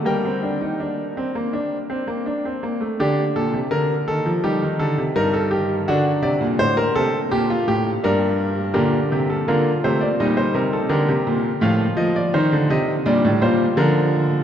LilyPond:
<<
  \new Staff \with { instrumentName = "Grand piano" } { \time 4/4 \key g \minor \tempo 4 = 83 << { g''2.~ g''8 r8 | g'8 a'8 bes'8 a'8 g'8 a'8 bes'16 a'16 g'8 | fis'8 d''8 c''16 bes'16 a'8 g'16 f'16 g'8 bes'4 | \key bes \major bes'8 g'16 a'16 bes'8 c''16 d''16 ees''16 c''16 bes'16 a'16 bes'4 |
f''8 ees''16 d''16 c''8 ees''8 d''8 c''8 bes'4 | } \\ { bes'2.~ bes'8 r8 | d'2 ees'4 ees'4 | d'2. d'4 | g'4 f'4 ees'4 g'4 |
f'4 ees'4 d'8 f'4. | } >> }
  \new Staff \with { instrumentName = "Grand piano" } { \clef bass \time 4/4 \key g \minor << { bes16 c'16 d'16 ees'16 d'8 c'16 bes16 d'8 c'16 bes16 d'16 c'16 bes16 a16 | r1 | r1 | \key bes \major d4 bes8 a8 g2 |
f2 g4 f4 | } \\ { g2.~ g8 r8 | d8 bes,16 c16 d8 ees16 f16 g16 ees16 d16 c16 g,4 | d8 c16 bes,16 a,8 c8 bes,8 a,8 g,4 | bes,8 c8 d8 c8 bes,8 c8 d16 c16 bes,8 |
a,8 f8 ees16 d16 c8 bes,16 a,16 bes,8 d4 | } >> }
>>